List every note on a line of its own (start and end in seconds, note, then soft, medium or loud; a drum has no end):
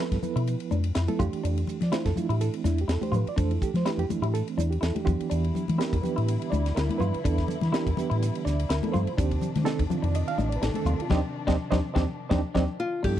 0.00 0.15 F3 medium
0.00 0.15 B3 medium
0.00 0.15 E4 medium
0.00 0.16 E4 medium
0.00 0.45 A4 medium
0.00 0.15 B4 medium
0.11 0.20 G2 medium
0.11 kick medium
0.11 snare soft
0.11 ride medium
0.22 0.79 F3 medium
0.22 0.79 B3 medium
0.22 0.79 E4 medium
0.22 0.79 B4 medium
0.22 muted fingered electric bass stroke soft
0.22 hi-hat pedal medium
0.22 low conga medium
0.36 0.55 B2 medium
0.36 0.53 E4 medium
0.36 ride medium
0.47 hi-hat pedal medium
0.47 ride medium
0.60 ride medium
0.71 0.90 F2 medium
0.71 0.88 D4 medium
0.71 hi-hat pedal medium
0.71 high conga medium
0.84 ride medium
0.95 1.06 F2 medium
0.95 1.12 E4 medium
0.95 snare medium
0.95 hi-hat pedal medium
0.95 ride medium
1.08 1.20 F3 medium
1.08 1.20 B3 medium
1.08 1.20 E4 medium
1.08 1.20 A4 medium
1.08 muted fingered electric bass stroke soft
1.08 ride medium
1.08 high conga medium
1.19 1.30 F2 medium
1.19 1.79 E3 medium
1.19 1.78 A3 medium
1.19 1.79 D4 medium
1.19 1.37 F4 medium
1.19 1.79 G4 loud
1.19 kick medium
1.19 hi-hat pedal medium
1.19 low conga medium
1.33 muted fingered electric bass stroke soft
1.33 ride medium
1.44 1.63 F2 medium
1.44 1.61 D4 medium
1.44 hi-hat pedal medium
1.44 ride medium
1.57 ride medium
1.67 hi-hat pedal medium
1.67 low conga medium
1.81 1.90 F3 medium
1.81 1.93 D5 medium
1.81 snare soft
1.81 ride medium
1.81 high conga medium
1.92 2.09 E3 medium
1.92 2.09 A3 medium
1.92 2.09 D4 medium
1.92 2.09 E4 medium
1.92 2.09 F4 medium
1.92 2.06 C5 medium
1.92 snare medium
1.92 hi-hat pedal medium
1.92 ride medium
2.06 2.14 F2 medium
2.06 2.17 A4 medium
2.06 kick medium
2.06 snare soft
2.06 ride medium
2.16 2.73 E3 medium
2.16 2.73 A3 medium
2.16 2.73 D4 medium
2.16 2.65 E4 medium
2.16 2.30 F4 medium
2.16 muted fingered electric bass stroke soft
2.16 hi-hat pedal medium
2.16 low conga medium
2.29 2.48 A2 medium
2.29 2.47 E4 medium
2.29 2.41 G4 medium
2.29 ride medium
2.41 2.54 A4 medium
2.41 hi-hat pedal medium
2.41 ride medium
2.54 2.65 C4 soft
2.54 ride medium
2.64 2.83 E2 medium
2.64 2.82 D4 medium
2.64 2.78 E4 medium
2.64 snare soft
2.64 hi-hat pedal medium
2.64 high conga medium
2.78 2.90 G4 medium
2.78 ride medium
2.88 2.99 E2 medium
2.88 3.06 E4 medium
2.88 3.03 A4 medium
2.88 snare loud
2.88 hi-hat pedal medium
2.88 ride medium
3.01 3.25 E3 medium
3.01 3.26 A3 medium
3.01 3.26 D4 medium
3.01 3.26 G4 medium
3.01 3.13 C5 medium
3.01 muted fingered electric bass stroke soft
3.01 ride medium
3.01 high conga medium
3.12 3.22 A2 medium
3.12 3.29 F4 medium
3.12 hi-hat pedal medium
3.12 low conga medium
3.16 3.27 B4 medium
3.27 3.38 D5 medium
3.27 muted fingered electric bass stroke soft
3.27 ride medium
3.36 3.57 F2 medium
3.36 3.70 E3 medium
3.36 3.70 A3 medium
3.36 3.54 D4 medium
3.36 3.70 D4 medium
3.36 3.70 A4 medium
3.36 3.51 C5 medium
3.36 kick loud
3.36 hi-hat pedal medium
3.36 ride medium
3.51 3.62 E4 medium
3.51 ride medium
3.62 3.75 G4 medium
3.62 kick medium
3.62 hi-hat pedal medium
3.74 3.83 F3 medium
3.74 3.86 C5 medium
3.74 snare soft
3.74 ride medium
3.74 high conga medium
3.85 4.02 E3 medium
3.85 4.02 A3 medium
3.85 4.02 D4 medium
3.85 4.03 E4 medium
3.85 3.98 G4 medium
3.85 4.00 B4 medium
3.85 snare medium
3.85 hi-hat pedal medium
3.85 ride medium
3.98 4.07 F2 medium
3.98 4.10 G4 medium
3.98 ride medium
4.09 4.66 E3 medium
4.09 4.66 A3 medium
4.09 4.66 D4 medium
4.09 4.22 E4 medium
4.09 muted fingered electric bass stroke soft
4.09 hi-hat pedal medium
4.09 high conga medium
4.09 low conga medium
4.22 4.41 A2 medium
4.22 4.40 E4 medium
4.22 4.33 G4 medium
4.22 ride medium
4.34 4.47 A4 medium
4.34 hi-hat pedal medium
4.34 ride medium
4.48 4.58 C4 soft
4.48 ride medium
4.57 4.77 E2 medium
4.57 4.75 D4 medium
4.57 4.71 E4 medium
4.57 hi-hat pedal medium
4.57 high conga medium
4.71 4.82 G4 medium
4.71 ride medium
4.81 4.93 E2 medium
4.81 4.99 E4 medium
4.81 4.97 A4 medium
4.81 snare medium
4.81 hi-hat pedal medium
4.81 ride medium
4.95 5.03 E3 medium
4.95 5.07 A3 medium
4.95 5.03 D4 medium
4.95 5.04 G4 medium
4.95 ride medium
4.95 high conga medium
5.05 5.17 E2 medium
5.05 5.65 E3 medium
5.05 5.65 B3 medium
5.05 5.65 D4 medium
5.05 5.23 F4 medium
5.05 5.65 G4 medium
5.05 kick loud
5.05 hi-hat pedal medium
5.05 low conga medium
5.20 muted fingered electric bass stroke soft
5.20 ride medium
5.28 5.50 E2 medium
5.28 9.13 D3 medium
5.28 9.13 G3 medium
5.28 5.47 D4 medium
5.28 9.13 E4 medium
5.28 hi-hat pedal medium
5.28 ride medium
5.44 ride medium
5.55 hi-hat pedal medium
5.55 low conga medium
5.68 5.78 E3 medium
5.68 ride medium
5.68 high conga medium
5.78 5.95 E3 medium
5.78 5.95 B3 medium
5.78 5.96 D4 medium
5.78 5.96 E4 medium
5.78 5.96 G4 medium
5.78 6.03 A#4 medium
5.78 snare medium
5.78 hi-hat pedal medium
5.78 ride medium
5.93 6.02 E2 medium
5.93 kick medium
5.93 ride medium
6.02 6.60 E3 medium
6.02 6.60 B3 medium
6.02 6.60 D4 medium
6.02 6.60 G4 medium
6.02 6.48 B4 medium
6.02 hi-hat pedal medium
6.02 low conga medium
6.16 6.36 A2 medium
6.16 6.34 E4 medium
6.16 ride medium
6.28 hi-hat pedal medium
6.28 ride medium
6.42 ride medium
6.50 6.71 D2 loud
6.50 6.69 D4 medium
6.50 6.75 D5 medium
6.50 hi-hat pedal medium
6.50 high conga medium
6.66 snare soft
6.66 ride medium
6.75 6.87 D2 medium
6.75 6.93 E4 medium
6.75 6.99 A#4 medium
6.75 snare medium
6.75 hi-hat pedal medium
6.75 ride medium
6.88 7.13 E3 medium
6.88 7.13 B3 medium
6.88 7.13 D4 medium
6.88 7.13 E4 medium
6.88 muted fingered electric bass stroke soft
6.88 ride medium
6.88 high conga medium
6.98 7.11 G2 medium
6.98 7.18 F4 medium
6.98 7.68 B4 loud
6.98 hi-hat pedal medium
6.98 low conga medium
7.14 muted fingered electric bass stroke soft
7.14 ride medium
7.24 7.44 E2 medium
7.24 7.57 E3 medium
7.24 7.57 B3 medium
7.24 7.42 D4 medium
7.24 7.57 D4 medium
7.24 7.57 A4 medium
7.24 kick loud
7.24 hi-hat pedal medium
7.24 ride medium
7.38 kick medium
7.38 snare soft
7.38 ride soft
7.48 hi-hat pedal medium
7.48 low conga medium
7.61 7.71 E3 medium
7.61 snare soft
7.61 ride medium
7.61 high conga medium
7.72 7.89 E3 medium
7.72 7.89 B3 medium
7.72 7.89 D4 medium
7.72 7.90 E4 medium
7.72 7.89 G4 medium
7.72 7.97 A#4 medium
7.72 snare medium
7.72 hi-hat pedal medium
7.72 ride medium
7.87 7.95 E2 medium
7.87 kick medium
7.87 ride medium
7.96 8.53 E3 medium
7.96 8.53 B3 medium
7.96 8.53 D4 medium
7.96 8.54 G4 medium
7.96 8.42 B4 medium
7.96 muted fingered electric bass stroke soft
7.96 hi-hat pedal medium
7.96 low conga medium
8.10 8.29 A2 medium
8.10 8.27 E4 medium
8.10 ride medium
8.22 hi-hat pedal medium
8.22 ride medium
8.35 ride medium
8.45 8.64 D2 medium
8.45 8.62 D4 medium
8.45 8.69 D5 medium
8.45 snare soft
8.45 hi-hat pedal medium
8.59 ride medium
8.69 8.80 D2 medium
8.69 8.87 E4 medium
8.69 8.94 A#4 medium
8.69 snare loud
8.69 hi-hat pedal medium
8.69 ride medium
8.83 9.07 E3 medium
8.83 9.07 B3 medium
8.83 9.07 D4 medium
8.83 9.07 A4 medium
8.83 ride medium
8.83 high conga medium
8.92 9.05 G2 medium
8.92 9.11 F4 medium
8.92 9.61 C5 medium
8.92 hi-hat pedal medium
8.92 low conga medium
9.07 muted fingered electric bass stroke soft
9.07 ride medium
9.18 9.37 D#2 loud
9.18 13.01 C3 medium
9.18 9.51 D#3 medium
9.18 13.01 D#3 medium
9.18 9.51 C4 medium
9.18 9.35 D4 medium
9.18 9.51 D4 medium
9.18 13.01 D4 medium
9.18 9.51 G4 medium
9.18 kick loud
9.18 hi-hat pedal medium
9.18 ride medium
9.31 kick medium
9.31 ride medium
9.41 hi-hat pedal medium
9.41 low conga medium
9.55 9.64 D#3 medium
9.55 snare soft
9.55 ride medium
9.55 high conga medium
9.65 9.82 D#3 loud
9.65 9.82 C4 loud
9.65 9.82 D4 medium
9.65 9.83 D#4 medium
9.65 9.82 A4 loud
9.65 snare medium
9.65 hi-hat pedal medium
9.65 ride medium
9.79 9.88 D#2 medium
9.79 kick medium
9.79 ride medium
9.89 10.46 D#3 medium
9.89 10.46 C4 medium
9.89 10.46 D4 medium
9.89 10.46 F4 medium
9.89 hi-hat pedal medium
9.89 low conga medium
10.02 10.22 F2 medium
10.02 10.20 D#4 medium
10.02 10.15 D5 medium
10.02 ride medium
10.15 10.28 D#5 medium
10.15 hi-hat pedal medium
10.15 ride medium
10.28 10.38 F5 loud
10.28 ride medium
10.38 10.57 A1 medium
10.38 10.55 D4 medium
10.38 10.46 D#5 medium
10.38 hi-hat pedal medium
10.38 high conga medium
10.49 10.56 D5 medium
10.49 ride medium
10.56 10.63 B4 medium
10.62 10.72 A1 medium
10.62 10.79 D#4 medium
10.62 10.75 A4 medium
10.62 snare medium
10.62 hi-hat pedal medium
10.62 ride medium
10.74 11.00 D#3 medium
10.74 11.00 C4 medium
10.74 11.00 D4 medium
10.74 11.00 A4 medium
10.74 ride medium
10.74 high conga medium
10.85 10.96 D#2 medium
10.85 11.04 F4 medium
10.85 hi-hat pedal medium
10.85 low conga medium
11.00 11.12 F4 medium
11.00 ride medium
11.10 11.20 D#2 medium
11.10 11.20 C4 medium
11.10 11.19 D4 loud
11.10 11.19 D4 medium
11.10 11.19 D#4 medium
11.10 11.19 D#4 loud
11.10 11.19 G4 loud
11.10 11.20 C5 medium
11.10 11.20 D5 medium
11.10 11.20 D#5 medium
11.10 kick medium
11.10 snare medium
11.10 low conga medium
11.47 11.56 D#2 medium
11.47 11.56 C4 medium
11.47 11.55 D4 medium
11.47 11.56 D4 medium
11.47 11.55 D#4 loud
11.47 11.56 D#4 medium
11.47 11.55 G4 medium
11.47 11.55 C5 medium
11.47 11.55 D5 medium
11.47 11.55 D#5 medium
11.47 kick medium
11.47 snare medium
11.47 low conga medium
11.71 11.80 D#2 medium
11.71 11.79 C4 medium
11.71 11.79 D4 medium
11.71 11.79 D#4 medium
11.71 11.79 G4 medium
11.71 11.78 C5 loud
11.71 11.79 D5 loud
11.71 11.79 D#5 loud
11.71 kick medium
11.71 snare medium
11.71 low conga loud
11.94 12.04 D#2 medium
11.94 12.04 C4 loud
11.94 12.03 D4 loud
11.94 12.04 D4 medium
11.94 12.03 D#4 medium
11.94 12.04 D#4 medium
11.94 12.03 G4 loud
11.94 12.02 C5 medium
11.94 12.02 D5 medium
11.94 12.02 D#5 loud
11.94 kick medium
11.94 snare medium
11.94 low conga loud
12.29 12.41 D#2 medium
12.29 12.40 C4 medium
12.29 12.39 D4 medium
12.29 12.40 D4 medium
12.29 12.40 D#4 medium
12.29 12.40 D#4 loud
12.29 12.39 G4 medium
12.29 12.39 C5 medium
12.29 12.39 D5 medium
12.29 12.39 D#5 medium
12.29 kick medium
12.29 snare medium
12.29 low conga medium
12.54 12.65 D#2 medium
12.54 12.65 C4 loud
12.54 12.64 D4 medium
12.54 12.65 D4 medium
12.54 12.64 D#4 medium
12.54 12.63 G4 medium
12.54 12.64 C5 medium
12.54 12.64 D5 loud
12.54 12.64 D#5 medium
12.54 kick medium
12.54 snare medium
12.54 low conga loud
12.80 13.04 F4 medium
13.03 13.20 G2 medium
13.03 13.20 F3 medium
13.03 13.20 B3 medium
13.03 13.20 D4 medium
13.03 13.20 E4 medium
13.03 13.20 G4 medium
13.03 13.20 A4 medium
13.03 kick medium
13.03 crash medium